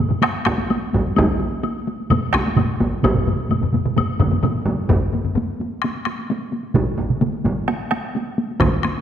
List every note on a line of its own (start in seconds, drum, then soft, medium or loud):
0.10 taiko low-mid medium
0.10 taiko mid medium
0.10 taiko high soft
0.22 taiko rim medium
0.22 taiko high medium
0.22 high woodblock soft
0.35 taiko high soft
0.45 taiko rim medium
0.45 taiko medium
0.45 taiko high medium
0.58 taiko high soft
0.70 taiko high medium
0.70 high woodblock soft
0.82 taiko high soft
0.93 taiko medium
0.93 taiko high soft
1.05 taiko high soft
1.16 taiko loud
1.16 taiko high medium
1.16 high woodblock soft
1.29 taiko high soft
1.40 taiko high medium
1.52 taiko high soft
1.63 taiko high medium
1.63 high woodblock soft
1.76 taiko high soft
1.87 taiko high medium
2.00 taiko high soft
2.10 taiko low-mid loud
2.10 taiko mid medium
2.10 taiko high medium
2.10 high woodblock medium
2.24 taiko high soft
2.33 taiko rim medium
2.33 taiko medium
2.33 taiko high medium
2.46 taiko high soft
2.56 taiko low-mid medium
2.56 taiko mid medium
2.56 taiko high medium
2.56 high woodblock soft
2.69 taiko high soft
2.80 taiko medium
2.80 taiko high medium
2.92 taiko high soft
3.03 taiko medium
3.03 taiko low-mid medium
3.03 taiko mid medium
3.03 taiko high medium
3.03 high woodblock soft
3.14 taiko low-mid medium
3.14 taiko mid medium
3.26 taiko low-mid medium
3.26 taiko mid medium
3.26 taiko high medium
3.39 taiko high soft
3.49 taiko low-mid medium
3.49 taiko mid medium
3.49 taiko high medium
3.49 high woodblock soft
3.62 taiko low-mid medium
3.62 taiko mid medium
3.62 taiko high soft
3.73 taiko low-mid medium
3.73 taiko mid medium
3.73 taiko high soft
3.85 taiko low-mid medium
3.85 taiko mid medium
3.85 taiko high soft
3.97 taiko low-mid medium
3.97 taiko mid medium
3.97 taiko high medium
3.97 high woodblock medium
4.10 taiko high soft
4.20 taiko medium
4.20 taiko low-mid loud
4.20 taiko mid medium
4.20 taiko high soft
4.20 high woodblock soft
4.31 taiko low-mid medium
4.31 taiko mid medium
4.31 taiko high medium
4.43 taiko low-mid medium
4.43 taiko mid loud
4.43 taiko high medium
4.43 high woodblock soft
4.57 taiko high soft
4.65 taiko medium
4.65 taiko high soft
4.80 taiko high soft
4.89 taiko medium
4.89 taiko low-mid medium
4.89 taiko high medium
5.03 taiko high soft
5.13 taiko low-mid medium
5.13 taiko high soft
5.25 taiko low-mid medium
5.25 taiko high soft
5.35 taiko low-mid medium
5.35 taiko high medium
5.49 taiko high soft
5.61 taiko high soft
5.73 taiko high soft
5.82 taiko rim medium
5.82 taiko high medium
5.97 taiko high soft
6.05 taiko rim medium
6.05 taiko high soft
6.19 taiko high soft
6.30 taiko high medium
6.52 taiko high soft
6.64 taiko high soft
6.74 taiko medium
6.74 taiko mid medium
6.74 taiko high medium
6.87 taiko high soft
6.98 taiko medium
6.98 taiko mid medium
6.98 taiko high soft
7.10 taiko mid medium
7.10 taiko high soft
7.21 taiko mid medium
7.21 taiko high medium
7.34 taiko high soft
7.44 taiko medium
7.44 taiko high soft
7.56 taiko high soft
7.68 taiko rim medium
7.68 taiko high medium
7.80 taiko high soft
7.91 taiko rim medium
7.91 taiko high soft
8.04 taiko high soft
8.15 taiko high medium
8.38 taiko high soft
8.51 taiko high soft
8.60 taiko rim medium
8.60 taiko medium
8.60 taiko high soft
8.73 taiko high soft
8.83 taiko rim medium
8.83 taiko high soft
8.96 taiko high soft